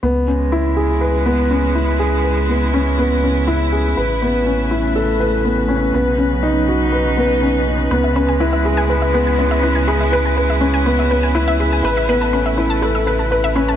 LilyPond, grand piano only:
\new Staff \with { instrumentName = "Grand piano" } { \time 4/4 \key cis \minor \tempo 4 = 122 b8 cis'8 e'8 gis'8 b'8 b8 cis'8 e'8 | gis'8 b'8 b8 cis'8 b8 cis'8 e'8 gis'8 | b'8 b8 cis'8 e'8 a'8 b'8 b8 cis'8 | b8 cis'8 dis'8 fis'8 b'8 b8 cis'8 dis'8 |
b8 cis'8 e'8 gis'8 b'8 b8 cis'8 e'8 | gis'8 b'8 b'8 cis'8 b8 cis'8 e'8 gis'8 | b'8 b8 cis'8 e'8 a'8 b'8 b'8 cis'8 | }